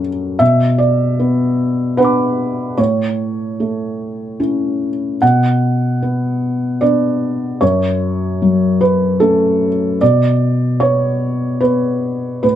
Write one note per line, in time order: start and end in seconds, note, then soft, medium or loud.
0.00 0.36 F#2 soft
0.00 0.43 F#3 soft
0.00 0.36 C#4 soft
0.00 0.36 F#4 soft
0.00 0.43 A4 soft
0.00 0.43 B4 medium
0.39 2.74 B2 soft
0.39 0.79 E5 medium
0.78 1.98 D5 medium
1.19 1.96 B3 soft
1.97 2.74 B3 soft
1.97 2.75 D4 soft
1.97 2.78 B4 medium
1.97 2.74 F#5 soft
1.97 2.76 B5 soft
2.04 2.77 D6 soft
2.78 5.17 A2 soft
2.78 4.40 C#5 medium
3.60 4.89 A3 soft
4.40 5.18 C#4 soft
4.40 5.18 E4 soft
5.22 7.58 B2 soft
5.22 6.82 F#5 medium
6.02 6.80 B3 soft
6.81 7.58 B3 soft
6.81 7.58 D4 soft
6.81 7.61 D5 medium
7.61 9.97 F#2 soft
7.61 8.80 C#5 medium
8.42 9.69 F#3 soft
8.81 9.20 B4 medium
9.20 9.97 A3 soft
9.20 9.97 C#4 soft
9.20 10.01 A4 medium
10.01 12.40 B2 medium
10.01 10.81 D5 medium
10.80 11.60 B3 soft
10.80 11.61 C#5 medium
11.61 12.40 B3 soft
11.61 12.41 B4 medium
12.43 12.55 A2 soft
12.43 12.55 B4 medium